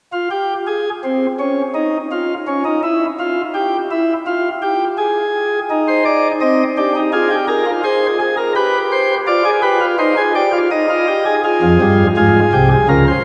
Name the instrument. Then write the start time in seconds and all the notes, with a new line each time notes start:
pipe organ
0.13 F4
0.31 G4
0.67 G#4
1.04 C4
1.39 C#4
1.75 D#4
2.12 F4
2.47 C#4
2.65 D#4
2.83 E4
3.19 F4
3.54 G4
3.91 E4
4.27 F4
4.62 G4
4.98 G#4
5.70 D#4
5.88 C5
6.05 D5
6.41 C4 D#5
6.78 D4 G4
6.96 D#4
7.13 F4 G#4
7.31 G4
7.48 G#4 A#4
7.66 F4
7.84 G#4 C5
8.20 G#4
8.37 A#4
8.56 G4 B4
8.92 C5
9.27 F4 D5
9.45 G#4
9.62 G4 B4
9.81 F4
9.99 D#4 C5
10.17 G#4
10.35 G4 D5
10.53 F4
10.71 D#4 D#5
10.90 F4
11.08 G4
11.26 G#4
11.44 F4 G#4
11.62 F2 F3
11.81 G2 G3
12.17 G#2 G#3 F4 G#4
12.53 C2 C3 G4
12.71 G#4
12.89 C#2 C#3 F4 A#4
13.07 C5